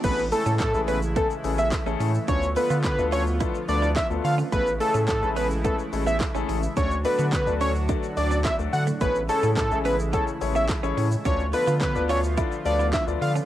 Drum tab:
CC |x---------------|----------------|----------------|----------------|
HH |x-o-x-o-x-o-x-o-|x-o-x-o-x-o-x-o-|x-o-x-o-x-o-x-o-|x-o-x-o-x-o-x-o-|
SH |xxxxxxxxxxxxxxxx|xxxxxxxxxxxxxxxx|xxxxxxxxxxxxxxxx|xxxxxxxxxxxxxxxx|
CP |----x-------x---|----x-------x---|----x-------x---|----x-------x---|
SD |----o-------o---|----o-------o---|----o-------o---|----o-------o---|
BD |o---o---o---o---|o---o---o---o---|o---o---o---o---|o---o---o---o---|

CC |----------------|----------------|
HH |x-o-x-o-x-o-x-o-|x-o-x-o-x-o-x-o-|
SH |xxxxxxxxxxxxxxxx|xxxxxxxxxxxxxxxx|
CP |----x-------x---|----x-------x---|
SD |----o-------o---|----o-------o---|
BD |o---o---o---o---|o---o---o---o---|